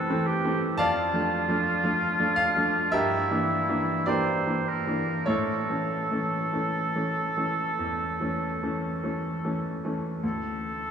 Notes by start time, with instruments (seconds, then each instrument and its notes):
Already playing: grand piano C3 E3 A3 C4, oboe A4
0.10 grand piano E3 A3 C4
0.27 oboe G4
0.44 grand piano E3 A3 C4
0.77 grand piano F2 D5 F5 A5, oboe F4
1.13 grand piano F3 A3 D4
1.48 grand piano F3 A3 D4
1.83 grand piano F3 A3 D4
2.19 grand piano F3 A3 D4
2.36 grand piano F5
2.57 grand piano F3 A3 D4
2.92 grand piano G2 G4 A#4 E5, oboe E4
3.31 grand piano E3 A#3 D4
3.69 grand piano E3 A#3 D4
4.06 grand piano E3 A#3 D4 G4 A#4 D5, oboe C5
4.47 grand piano E3 A#3 D4
4.68 oboe A#4
4.87 grand piano E3 A#3 D4
5.26 grand piano A2 E4 A4 C#5, oboe A4
5.69 grand piano E3 A3 C#4
6.11 grand piano E3 A3 C#4
6.53 grand piano E3 A3 C#4
6.95 grand piano E3 A3 C#4
7.37 grand piano E3 A3 C#4
7.79 grand piano E2
8.20 grand piano E3 A3 C#4
8.63 grand piano E3 A3 C#4
9.03 grand piano E3 A3 C#4
9.44 grand piano E3 A3 C#4
9.85 grand piano E3 A3 C#4
10.23 grand piano D2, oboe A4